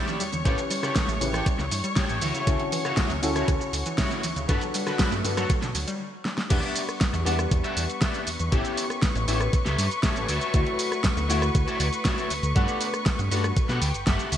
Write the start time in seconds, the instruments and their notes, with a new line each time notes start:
Already playing: grand piano D4 G4 B4 F#5, clean electric guitar E4 G4 D5, string section C#5 C#6
0.07 synth arpeggio sound E3, closed hi-hat, shaker
0.20 analog synth bass E2, synth arpeggio sound G3, open hi-hat, shaker
0.33 analog synth bass E2, synth arpeggio sound D3, closed hi-hat, shaker
0.44 analog synth bass A1, synth arpeggio sound C#3, grand piano C#4 E4 G4 B4, clean electric guitar G4 A4 C#5, kick, closed hi-hat, shaker
0.58 synth arpeggio sound E3, closed hi-hat, shaker
0.70 synth arpeggio sound G3, muted clean electric guitar stroke, open hi-hat, shaker
0.83 synth arpeggio sound C#3, clean electric guitar G4 A4 C#5, cross-stick, closed hi-hat, shaker
0.95 synth arpeggio sound E3, kick, snare, closed hi-hat, shaker
1.08 analog synth bass A1, synth arpeggio sound A3, closed hi-hat, shaker
1.20 analog synth bass A1, synth arpeggio sound C#3, grand piano C#4 E4 G4 B4, open hi-hat, shaker
1.33 synth arpeggio sound E3, clean electric guitar G4 A4 C#5, cross-stick, closed hi-hat, shaker
1.46 synth arpeggio sound G3, kick, closed hi-hat, shaker
1.59 analog synth bass C#2, synth arpeggio sound C#3, muted clean electric guitar stroke, snare, shaker
1.71 analog synth bass G2, synth arpeggio sound E3, muted clean electric guitar stroke, open hi-hat, shaker
1.84 synth arpeggio sound G3, closed hi-hat, shaker
1.96 synth arpeggio sound C#3, clean electric guitar G4 A4 C#5, kick, snare, closed hi-hat, shaker
2.09 analog synth bass A1, synth arpeggio sound E3, closed hi-hat, shaker
2.21 analog synth bass D2, synth arpeggio sound E3, clean electric guitar E4 F#4 C#5, open hi-hat, shaker
2.34 synth arpeggio sound C#3, closed hi-hat, shaker
2.46 analog synth bass D2, synth arpeggio sound C#3, grand piano C#4 E4 F#4 A4, kick, closed hi-hat, shaker
2.60 synth arpeggio sound D3, closed hi-hat
2.72 synth arpeggio sound E3, muted clean electric guitar stroke, open hi-hat, shaker
2.85 synth arpeggio sound C#3, clean electric guitar E4 F#4 C#5, cross-stick, closed hi-hat, shaker
2.97 synth arpeggio sound D3, kick, snare, closed hi-hat, shaker
3.10 analog synth bass D2, synth arpeggio sound F#3, closed hi-hat, shaker
3.22 analog synth bass D2, synth arpeggio sound C#3, grand piano C#4 E4 F#4 A4, open hi-hat, shaker
3.35 synth arpeggio sound D3, clean electric guitar E4 F#4 C#5, cross-stick, closed hi-hat, shaker
3.48 analog synth bass D2, synth arpeggio sound E3, kick, closed hi-hat, shaker
3.60 synth arpeggio sound C#3, muted clean electric guitar stroke, shaker
3.73 analog synth bass D2, synth arpeggio sound D3, muted clean electric guitar stroke, open hi-hat, shaker
3.86 synth arpeggio sound E3, closed hi-hat, shaker
3.98 synth arpeggio sound C#3, clean electric guitar E4 F#4 C#5, kick, snare, closed hi-hat, shaker
4.11 synth arpeggio sound D3, closed hi-hat, shaker
4.23 analog synth bass D2, synth arpeggio sound E3, open hi-hat, shaker
4.36 analog synth bass D2, synth arpeggio sound C#3, closed hi-hat, shaker
4.48 analog synth bass G2, synth arpeggio sound D3, grand piano B3 D4 F#4 A4, clean electric guitar F#4 A4 B4, kick, closed hi-hat, shaker
4.61 synth arpeggio sound F#3, closed hi-hat, shaker
4.74 synth arpeggio sound G3, muted clean electric guitar stroke, open hi-hat, shaker
4.86 synth arpeggio sound D3, clean electric guitar F#4 A4 B4, cross-stick, closed hi-hat, shaker
4.99 synth arpeggio sound F#3, kick, snare, closed hi-hat, shaker
5.11 analog synth bass G2, synth arpeggio sound A3, closed hi-hat, shaker
5.23 analog synth bass G2, synth arpeggio sound D3, grand piano B3 D4 F#4 A4, open hi-hat, shaker
5.37 synth arpeggio sound F#3, clean electric guitar F#4 A4 C#5, cross-stick, closed hi-hat, shaker
5.50 synth arpeggio sound G3, kick, closed hi-hat, shaker
5.62 analog synth bass B2, synth arpeggio sound D3, muted clean electric guitar stroke, snare, closed hi-hat, shaker
5.74 analog synth bass D2, synth arpeggio sound F#3, muted clean electric guitar stroke, open hi-hat, shaker
5.88 synth arpeggio sound G3, closed hi-hat, shaker
6.25 snare
6.38 snare
6.49 analog synth bass E2, grand piano G3 B3 D4 F#5, clean electric guitar G4 B4 D5 E5, string section B4 C#6, kick, closed hi-hat, crash, shaker
6.63 closed hi-hat
6.76 open hi-hat, shaker
6.89 cross-stick, closed hi-hat, shaker
7.01 kick, snare, closed hi-hat, shaker
7.13 analog synth bass E2, muted clean electric guitar stroke, closed hi-hat, shaker
7.25 analog synth bass E2, grand piano G3 B3 D4 F#5, clean electric guitar G4 B4 D5 E5, open hi-hat, shaker
7.39 cross-stick, closed hi-hat, shaker
7.51 analog synth bass E2, muted clean electric guitar stroke, kick, closed hi-hat, shaker
7.64 clean electric guitar G4 B4 D5 E5, closed hi-hat, shaker
7.77 analog synth bass E2, open hi-hat, shaker
7.90 closed hi-hat, shaker
8.01 clean electric guitar G4 B4 D5 E5, kick, snare, closed hi-hat, shaker
8.14 closed hi-hat, shaker
8.27 analog synth bass E2, open hi-hat, shaker
8.39 analog synth bass E2, closed hi-hat, shaker
8.51 analog synth bass A1, grand piano B3 C#4 E4 G4, clean electric guitar G4 A4 C#5 E5, kick, closed hi-hat, shaker
8.65 closed hi-hat, shaker
8.77 open hi-hat, shaker
8.90 cross-stick, closed hi-hat, shaker
9.02 kick, snare, closed hi-hat, shaker
9.15 analog synth bass A1, muted clean electric guitar stroke, closed hi-hat, shaker
9.28 analog synth bass A1, grand piano B3 C#4 E4 G4, clean electric guitar G4 A4 C#5 E5, open hi-hat, shaker
9.41 cross-stick, closed hi-hat, shaker
9.53 muted clean electric guitar stroke, kick, closed hi-hat, shaker
9.65 analog synth bass C#2, clean electric guitar G4 A4 C#5 E5, snare, closed hi-hat, shaker
9.78 analog synth bass G2, open hi-hat, shaker
9.91 closed hi-hat, shaker
10.03 clean electric guitar G4 A4 C#5 E5 A5, kick, snare, closed hi-hat, shaker
10.16 analog synth bass A1, closed hi-hat, shaker
10.28 analog synth bass D2, clean electric guitar F#4 C#5 D5 E5, open hi-hat, shaker
10.41 closed hi-hat, shaker
10.53 analog synth bass D2, grand piano A3 E4 F#4, kick, closed hi-hat, shaker
10.67 closed hi-hat
10.79 open hi-hat, shaker
10.92 cross-stick, closed hi-hat, shaker
11.04 kick, snare, closed hi-hat, shaker
11.17 analog synth bass D2, muted clean electric guitar stroke, closed hi-hat, shaker
11.28 analog synth bass D2, grand piano A3 E4 F#4, clean electric guitar F#4 C#5 D5 E5, open hi-hat, shaker
11.42 cross-stick, closed hi-hat, shaker
11.55 analog synth bass D2, muted clean electric guitar stroke, kick, closed hi-hat, shaker
11.67 clean electric guitar F#4 C#5 D5 E5, closed hi-hat, shaker
11.80 analog synth bass D2, open hi-hat, shaker
11.93 closed hi-hat, shaker
12.05 clean electric guitar F#4 C#5 D5 E5, kick, snare, closed hi-hat, shaker
12.18 closed hi-hat, shaker
12.30 analog synth bass D2, open hi-hat, shaker
12.43 analog synth bass D2, closed hi-hat, shaker
12.55 analog synth bass G2, grand piano A3 B3 D4 F#5, clean electric guitar G4 A4 B4 F#5, kick, closed hi-hat, shaker
12.68 closed hi-hat, shaker
12.81 open hi-hat, shaker
12.94 cross-stick, closed hi-hat, shaker
13.06 kick, snare, closed hi-hat, shaker
13.18 analog synth bass G2, muted clean electric guitar stroke, closed hi-hat, shaker
13.31 analog synth bass G2, grand piano A3 B3 D4 F#4, clean electric guitar G4 A4 B4 F#5, open hi-hat, shaker
13.44 cross-stick, closed hi-hat, shaker
13.56 muted clean electric guitar stroke, kick, closed hi-hat, shaker
13.69 analog synth bass B2, clean electric guitar G4 A4 B4 F#5, snare, closed hi-hat, shaker
13.82 analog synth bass D2, clean electric guitar G5, open hi-hat, shaker
13.94 analog synth bass G1, closed hi-hat, shaker
14.06 analog synth bass G1, clean electric guitar G4 A4 B4 E5 F#5, kick, snare, closed hi-hat, shaker
14.19 closed hi-hat, shaker
14.32 analog synth bass D2, open hi-hat, shaker